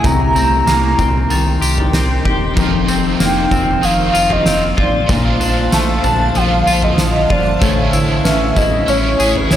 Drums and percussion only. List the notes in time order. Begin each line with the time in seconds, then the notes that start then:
0.04 kick, floor tom, tambourine
0.36 tambourine
0.67 snare, tambourine
0.99 kick, floor tom, tambourine
1.30 tambourine
1.62 tambourine
1.78 floor tom
1.93 snare, tambourine
2.25 kick, floor tom
2.57 kick, floor tom, tambourine
2.88 tambourine
3.20 snare, tambourine
3.51 kick, floor tom, tambourine
3.83 tambourine
4.15 tambourine
4.30 floor tom
4.46 snare, tambourine
4.78 kick, floor tom
5.09 kick, floor tom, tambourine
5.41 tambourine
5.72 snare, tambourine
6.04 floor tom, tambourine
6.35 floor tom, tambourine
6.67 tambourine
6.82 floor tom
6.98 snare, tambourine
7.30 kick, floor tom
7.62 kick, floor tom, tambourine
7.93 tambourine
8.25 snare, tambourine
8.56 kick, floor tom, tambourine
8.88 tambourine
9.20 tambourine
9.35 floor tom
9.51 snare, tambourine